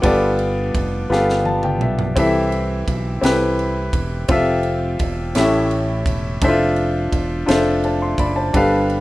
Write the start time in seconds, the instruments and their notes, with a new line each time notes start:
0.02 fingered electric bass G1, grand piano G2 B3 F4 G4 A4 D5, kick, ride
0.39 ride
0.75 fingered electric bass F1, kick, ride
1.10 fingered electric bass G1, grand piano B3 F4 G4 A4 F5, snare
1.29 snare
1.45 grand piano A5, high tom
1.63 grand piano G5, mid tom
1.81 fingered electric bass B1, grand piano E5, mid tom
1.99 floor tom
2.16 fingered electric bass C2, grand piano E3 C4 E4 G4 A4 E5, kick, ride
2.52 ride
2.88 fingered electric bass B1, kick, ride
3.21 fingered electric bass C2, grand piano C4 E4 G4 A4 B4, snare, ride
3.59 ride
3.93 fingered electric bass E1, kick, ride
4.28 fingered electric bass F1, grand piano C4 F4 G4 A4 E5, kick, ride
4.63 ride
4.99 fingered electric bass E1, kick, ride
5.35 fingered electric bass A1, grand piano A2 C#4 E4 G4 A4 E5, snare, ride
5.71 ride
6.06 fingered electric bass E1, kick, ride
6.41 fingered electric bass F1, grand piano D4 E4 A4 C5 E5, kick, ride
6.49 grand piano F4
6.76 ride
7.13 fingered electric bass E1, kick, ride
7.46 fingered electric bass F1, grand piano D4 F4 A4 C5 E5, snare, ride
7.84 grand piano C5 A5, ride
8.02 grand piano E5 C6
8.18 fingered electric bass F#1, grand piano D5 B5, kick, ride
8.36 grand piano C5 A5
8.53 fingered electric bass G1, grand piano G2 D4 G4 A4 B4 F5, kick, ride
8.90 ride